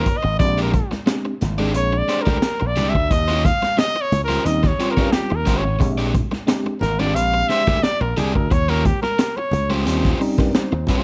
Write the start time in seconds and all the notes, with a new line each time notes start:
Already playing: A#4
0.06 muted overdriven electric guitar stroke, kick, closed hi-hat, low conga
0.17 D#5
0.23 G#1, muted overdriven electric guitar stroke
0.39 A#1 G#3 C4 D4 G4 D5, muted overdriven electric guitar stroke, kick, closed hi-hat, muted conga
0.58 G#3 D4 G4 D5, closed hi-hat, muted conga
0.62 A#4
0.73 muted overdriven electric guitar stroke, kick, closed hi-hat, high conga
0.91 muted overdriven electric guitar stroke, snare, high conga
1.06 G#3 C4 D4 G4, muted overdriven electric guitar stroke, snare, closed hi-hat
1.25 muted overdriven electric guitar stroke
1.41 G#1, snare, closed hi-hat, high conga, low conga
1.58 G#3 C4 D4 G4 G#4 D5, high conga
1.74 A#1 C#5, muted overdriven electric guitar stroke, closed hi-hat
1.93 muted overdriven electric guitar stroke
1.98 D5
2.08 G#3 D4 G4 C5, snare, closed hi-hat
2.22 A#4 D5
2.26 D2 G#3 D4 G4, kick, snare, high conga
2.42 snare, closed hi-hat, high conga
2.60 A#1, muted overdriven electric guitar stroke, muted conga
2.67 D5
2.76 C2 G#3 D4 G4 D5, closed hi-hat, low conga
2.89 E5
2.94 D2, muted overdriven electric guitar stroke, kick
3.11 D#2 D#5, muted overdriven electric guitar stroke, kick, closed hi-hat, muted conga
3.28 C#4 F4 G4 C#5, closed hi-hat
3.44 F5, muted overdriven electric guitar stroke, kick, closed hi-hat, high conga
3.62 muted overdriven electric guitar stroke, snare, high conga
3.77 D#5, muted overdriven electric guitar stroke, snare, closed hi-hat
3.96 muted overdriven electric guitar stroke
4.01 C#5
4.12 C#2, closed hi-hat, high conga, low conga
4.24 A#4 C5
4.29 C#4 F4 G4, closed hi-hat, high conga
4.45 D#2 G3 C4 C#4 D#4 D#5, muted overdriven electric guitar stroke, closed hi-hat, muted conga
4.63 muted overdriven electric guitar stroke, kick, snare, muted conga
4.67 C#5
4.78 G3 C4 C#4 F4 G4 C5, closed hi-hat
4.91 A#4
4.97 G2 C#4 F4 G4 C#5, kick, snare, high conga
5.12 G4, snare, closed hi-hat, muted conga, high conga
5.30 D#2, muted overdriven electric guitar stroke
5.36 A#4
5.46 G1 C#4 F4 G4 C5, kick, closed hi-hat, low conga
5.57 C#5
5.64 G#1, muted overdriven electric guitar stroke
5.79 A#1 G#3 C4 D4 G4, muted overdriven electric guitar stroke, kick, closed hi-hat, muted conga
5.98 G#3 D4 G4 D5, closed hi-hat
6.14 muted overdriven electric guitar stroke, kick, closed hi-hat, high conga
6.31 muted overdriven electric guitar stroke, snare, high conga
6.47 G#3 C4 D4 G4, muted overdriven electric guitar stroke, snare, closed hi-hat, muted conga
6.66 muted overdriven electric guitar stroke, muted conga
6.81 G#1 A#4, snare, closed hi-hat, high conga, low conga
6.99 G#3 C4 D4 F4 G4 D5, high conga
7.07 G4
7.14 A#1 F5, muted overdriven electric guitar stroke, closed hi-hat
7.34 muted overdriven electric guitar stroke
7.49 G#3 D4 G4 C5 E5, snare, closed hi-hat
7.67 D2 G#3 D4 G4 D5, kick, snare, high conga
7.82 D5, snare, closed hi-hat, high conga
8.01 A#1 A#4, muted overdriven electric guitar stroke, muted conga
8.17 C2 G#3 D4 G4 G#4 D5, closed hi-hat, low conga
8.35 D2 A#4, muted overdriven electric guitar stroke, kick
8.51 D#2 C#5, muted overdriven electric guitar stroke, kick, closed hi-hat
8.69 C#4 F4 G4 A#4 C#5, muted conga
8.85 G4, muted overdriven electric guitar stroke, kick, closed hi-hat, high conga
9.02 A#4, muted overdriven electric guitar stroke, snare, high conga
9.19 muted overdriven electric guitar stroke, snare, closed hi-hat, muted conga
9.37 C#5, muted overdriven electric guitar stroke, muted conga
9.51 C#2, closed hi-hat, high conga, low conga
9.70 C#4 F4 G4 C5, high conga
9.85 D#2 G3 C4 C#4 F4 G4 C5, closed hi-hat, muted conga
10.05 kick, snare
10.20 G3 C4 C#4 D#4 G4, muted overdriven electric guitar stroke, open hi-hat
10.38 G2 A#4, muted overdriven electric guitar stroke, kick, snare, high conga
10.53 C5, snare, closed hi-hat, muted conga, high conga
10.72 D#2, muted overdriven electric guitar stroke
10.87 C2 C#4 F4 G4 C5 C#5, kick, closed hi-hat, low conga